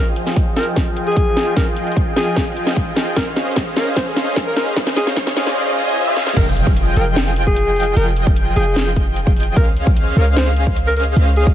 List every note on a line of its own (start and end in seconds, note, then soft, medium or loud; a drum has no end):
0.00 0.55 F1 loud
0.00 0.54 F3 medium
0.00 0.54 F4 medium
0.00 0.54 G#4 medium
0.00 0.54 D#5 medium
0.00 0.54 G5 medium
0.00 riser medium
0.16 closed hi-hat medium
0.27 snare soft
0.27 closed hi-hat soft
0.32 closed hi-hat medium
0.36 kick medium
0.36 closed hi-hat medium
0.56 1.55 F1 medium
0.56 1.54 F3 medium
0.56 1.54 F4 medium
0.56 1.54 G#4 medium
0.56 0.67 A#4 medium
0.56 1.54 D#5 medium
0.56 1.54 G5 loud
0.56 snare soft
0.56 closed hi-hat soft
0.60 closed hi-hat medium
0.63 closed hi-hat medium
0.76 kick medium
0.76 snare soft
0.76 closed hi-hat medium
0.96 closed hi-hat medium
1.07 1.55 G#4 medium
1.07 closed hi-hat soft
1.12 closed hi-hat medium
1.16 kick medium
1.16 closed hi-hat medium
1.37 snare medium
1.37 closed hi-hat medium
1.57 2.14 F3 medium
1.57 2.14 F4 medium
1.57 2.14 G#4 medium
1.57 1.67 A#4 medium
1.57 2.14 D#5 medium
1.57 2.14 G5 medium
1.57 kick loud
1.57 snare medium
1.57 closed hi-hat medium
1.77 closed hi-hat medium
1.87 closed hi-hat soft
1.92 closed hi-hat medium
1.97 kick medium
1.97 closed hi-hat medium
2.16 3.15 F1 medium
2.16 3.14 F3 medium
2.16 3.14 F4 medium
2.16 3.14 G#4 medium
2.16 2.47 G#4 medium
2.16 3.14 D#5 medium
2.16 3.14 G5 loud
2.16 snare medium
2.16 closed hi-hat soft
2.20 closed hi-hat medium
2.23 closed hi-hat medium
2.36 kick medium
2.36 snare medium
2.36 closed hi-hat medium
2.56 closed hi-hat medium
2.67 snare medium
2.67 closed hi-hat soft
2.72 closed hi-hat medium
2.76 kick medium
2.76 closed hi-hat medium
2.96 snare medium
2.96 closed hi-hat medium
3.16 3.75 C#2 medium
3.16 3.74 C#4 medium
3.16 3.74 G#4 medium
3.16 3.27 A#4 medium
3.16 3.74 C5 medium
3.16 3.74 D#5 medium
3.16 3.74 F5 medium
3.16 kick medium
3.16 snare medium
3.16 closed hi-hat medium
3.36 snare medium
3.36 closed hi-hat medium
3.47 closed hi-hat soft
3.52 closed hi-hat medium
3.56 kick medium
3.56 snare medium
3.56 closed hi-hat medium
3.76 4.75 C#2 medium
3.76 4.74 C#4 medium
3.76 4.74 G#4 medium
3.76 3.87 A#4 medium
3.76 4.74 C5 medium
3.76 4.74 D#5 medium
3.76 4.74 F5 loud
3.76 snare medium
3.76 closed hi-hat soft
3.80 closed hi-hat medium
3.83 closed hi-hat medium
3.96 4.07 C5 medium
3.96 kick medium
3.96 snare medium
3.96 closed hi-hat medium
4.16 snare medium
4.16 closed hi-hat medium
4.27 closed hi-hat soft
4.31 closed hi-hat medium
4.36 kick loud
4.36 snare medium
4.36 closed hi-hat medium
4.47 4.53 A#4 medium
4.56 4.63 A#4 medium
4.56 snare medium
4.56 closed hi-hat medium
4.76 5.35 C#2 medium
4.76 5.34 C#4 medium
4.76 5.34 G#4 medium
4.76 5.34 C5 medium
4.76 5.34 D#5 medium
4.76 5.34 F5 medium
4.76 kick loud
4.76 snare medium
4.76 closed hi-hat medium
4.87 snare medium
4.97 5.07 G#4 medium
4.97 snare medium
4.97 closed hi-hat medium
5.07 snare medium
5.07 closed hi-hat soft
5.12 closed hi-hat medium
5.16 kick loud
5.16 snare loud
5.16 closed hi-hat medium
5.27 snare medium
5.36 5.57 C#2 medium
5.36 5.85 C#4 medium
5.36 5.85 G#4 medium
5.36 5.85 C5 medium
5.36 5.85 D#5 medium
5.36 5.85 F5 loud
5.36 snare loud
5.36 closed hi-hat soft
5.40 closed hi-hat medium
5.43 snare medium
5.43 closed hi-hat medium
5.57 swell medium
5.87 6.05 C#4 loud
5.87 6.05 G#4 medium
5.87 6.05 C5 medium
5.87 6.05 D#5 medium
5.87 6.05 G#5 loud
6.07 6.34 C#4 medium
6.07 6.34 G#4 medium
6.07 6.34 C5 medium
6.07 6.34 D#5 medium
6.07 6.34 F5 medium
6.16 snare medium
6.27 snare medium
6.36 6.95 F1 loud
6.36 6.94 F3 medium
6.36 6.94 F4 medium
6.36 6.94 G#4 medium
6.36 6.47 A#4 medium
6.36 6.94 D#5 medium
6.36 6.94 G5 medium
6.36 kick loud
6.36 closed hi-hat medium
6.36 crash loud
6.36 impact medium
6.57 closed hi-hat medium
6.67 kick loud
6.77 closed hi-hat medium
6.96 7.95 F1 medium
6.96 7.94 F3 medium
6.96 7.94 F4 medium
6.96 7.94 G#4 medium
6.96 7.07 A#4 medium
6.96 7.94 D#5 medium
6.96 7.94 G5 loud
6.96 closed hi-hat medium
7.16 snare loud
7.16 closed hi-hat medium
7.36 closed hi-hat medium
7.47 7.95 G#4 loud
7.47 kick medium
7.56 closed hi-hat medium
7.76 closed hi-hat medium
7.80 closed hi-hat medium
7.83 closed hi-hat medium
7.96 8.55 F1 medium
7.96 8.54 F3 medium
7.96 8.54 F4 medium
7.96 8.54 G#4 medium
7.96 8.07 A#4 medium
7.96 8.54 D#5 medium
7.96 8.54 G5 medium
7.96 closed hi-hat medium
8.16 closed hi-hat medium
8.27 kick loud
8.36 closed hi-hat medium
8.56 9.58 F1 medium
8.56 9.54 F3 medium
8.56 9.54 F4 medium
8.56 8.87 G#4 medium
8.56 9.54 G#4 medium
8.56 9.54 D#5 medium
8.56 9.54 G5 loud
8.56 closed hi-hat medium
8.76 snare loud
8.76 closed hi-hat medium
8.96 kick medium
8.96 closed hi-hat medium
9.16 closed hi-hat medium
9.27 kick loud
9.36 closed hi-hat soft
9.40 closed hi-hat medium
9.43 closed hi-hat medium
9.56 10.15 C#2 loud
9.56 10.14 C#4 medium
9.56 10.14 G#4 medium
9.56 9.67 A#4 medium
9.56 10.14 C5 medium
9.56 10.14 D#5 medium
9.56 10.14 F5 medium
9.56 kick loud
9.56 closed hi-hat medium
9.77 closed hi-hat medium
9.87 kick loud
9.97 closed hi-hat medium
10.16 11.15 C#2 medium
10.16 11.14 C#4 medium
10.16 11.14 G#4 medium
10.16 10.27 A#4 medium
10.16 11.14 C5 medium
10.16 11.14 D#5 medium
10.16 11.14 F5 loud
10.16 closed hi-hat medium
10.37 10.47 C5 medium
10.37 snare loud
10.37 closed hi-hat medium
10.57 closed hi-hat medium
10.67 kick medium
10.76 closed hi-hat medium
10.87 10.93 A#4 medium
10.97 11.03 A#4 medium
10.97 closed hi-hat soft
11.00 closed hi-hat medium
11.03 closed hi-hat medium
11.16 11.54 C#2 medium
11.16 11.54 C#4 medium
11.16 11.54 G#4 medium
11.16 11.54 C5 medium
11.16 11.54 D#5 medium
11.16 11.54 F5 medium
11.16 closed hi-hat medium
11.36 11.47 G#4 medium
11.36 closed hi-hat medium
11.47 kick loud